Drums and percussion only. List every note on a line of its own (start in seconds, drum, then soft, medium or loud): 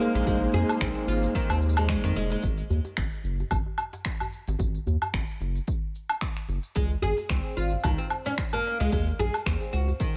0.00 cabasa medium
0.15 open hi-hat soft
0.15 djembe slap medium
0.15 cabasa soft
0.27 kick loud
0.27 open hi-hat medium
0.27 djembe bass medium
0.27 cabasa soft
0.54 open hi-hat soft
0.54 djembe bass medium
0.54 cabasa medium
0.69 open hi-hat soft
0.69 djembe tone medium
0.69 cabasa soft
0.69 low woodblock medium
0.81 finger snap loud
0.81 kick loud
0.81 open hi-hat medium
0.81 cabasa soft
1.08 open hi-hat soft
1.08 djembe slap soft
1.08 cabasa medium
1.23 open hi-hat soft
1.23 djembe tone medium
1.23 cabasa soft
1.35 kick loud
1.35 open hi-hat medium
1.35 cabasa soft
1.50 low woodblock medium
1.62 open hi-hat soft
1.62 cabasa medium
1.69 open hi-hat medium
1.77 open hi-hat soft
1.77 djembe tone medium
1.77 cabasa soft
1.77 low woodblock medium
1.89 finger snap loud
1.89 kick loud
1.89 open hi-hat medium
1.89 cabasa soft
2.04 finger snap soft
2.16 open hi-hat soft
2.16 djembe slap soft
2.16 cabasa medium
2.31 open hi-hat soft
2.31 cabasa soft
2.43 kick medium
2.43 open hi-hat medium
2.43 cabasa soft
2.58 open hi-hat soft
2.70 djembe bass medium
2.70 cabasa medium
2.85 open hi-hat soft
2.85 djembe tone medium
2.85 cabasa soft
2.97 finger snap loud
2.97 kick medium
2.97 open hi-hat medium
2.97 cabasa soft
3.24 cabasa medium
3.39 djembe tone medium
3.39 cabasa soft
3.51 kick medium
3.51 open hi-hat medium
3.51 djembe bass medium
3.51 cabasa soft
3.51 low woodblock medium
3.66 djembe tone soft
3.78 djembe tone soft
3.78 cabasa medium
3.78 low woodblock medium
3.93 open hi-hat soft
3.93 djembe slap medium
3.93 cabasa soft
4.05 finger snap loud
4.05 kick medium
4.05 open hi-hat medium
4.05 cabasa soft
4.20 open hi-hat soft
4.20 djembe tone medium
4.20 low woodblock medium
4.33 cabasa medium
4.48 open hi-hat soft
4.48 djembe slap medium
4.48 cabasa soft
4.59 kick medium
4.59 open hi-hat medium
4.59 djembe bass medium
4.59 cabasa soft
4.75 open hi-hat soft
4.87 djembe bass medium
4.87 cabasa medium
5.02 open hi-hat soft
5.02 djembe tone medium
5.02 cabasa soft
5.02 low woodblock medium
5.14 finger snap loud
5.14 kick loud
5.14 open hi-hat medium
5.14 cabasa soft
5.29 open hi-hat soft
5.41 djembe slap soft
5.41 cabasa medium
5.55 open hi-hat soft
5.55 cabasa soft
5.67 kick loud
5.67 open hi-hat medium
5.67 cabasa soft
5.95 cabasa medium
6.09 open hi-hat soft
6.09 cabasa soft
6.09 low woodblock medium
6.21 finger snap loud
6.21 kick loud
6.21 open hi-hat medium
6.21 cabasa soft
6.37 finger snap soft
6.37 open hi-hat soft
6.49 djembe slap soft
6.49 cabasa medium
6.63 open hi-hat soft
6.63 cabasa soft
6.75 kick medium
6.75 open hi-hat medium
6.75 cabasa soft
6.91 open hi-hat soft
7.02 djembe bass loud
7.02 cabasa medium
7.18 open hi-hat soft
7.18 djembe tone medium
7.18 cabasa soft
7.30 finger snap loud
7.30 kick loud
7.30 open hi-hat medium
7.30 cabasa soft
7.57 cabasa medium
7.72 djembe tone medium
7.72 cabasa soft
7.84 kick loud
7.84 open hi-hat medium
7.84 djembe bass medium
7.84 cabasa soft
7.84 low woodblock medium
7.99 djembe tone soft
8.10 djembe tone soft
8.10 cabasa medium
8.10 low woodblock medium
8.26 open hi-hat soft
8.26 djembe slap medium
8.26 cabasa soft
8.38 finger snap loud
8.38 kick loud
8.38 open hi-hat medium
8.38 cabasa soft
8.53 open hi-hat soft
8.53 djembe tone medium
8.53 low woodblock medium
8.65 cabasa medium
8.80 open hi-hat soft
8.80 djembe slap medium
8.80 cabasa soft
8.92 kick loud
8.92 open hi-hat medium
8.92 djembe bass medium
8.92 cabasa soft
9.07 open hi-hat soft
9.19 djembe bass medium
9.19 cabasa medium
9.34 open hi-hat soft
9.34 djembe tone medium
9.34 cabasa soft
9.34 low woodblock medium
9.46 finger snap medium
9.46 kick loud
9.46 open hi-hat medium
9.46 cabasa soft
9.62 open hi-hat soft
9.73 djembe slap soft
9.73 cabasa medium
9.88 open hi-hat soft
9.88 djembe tone medium
9.88 cabasa soft
10.00 kick medium
10.00 open hi-hat medium
10.00 cabasa soft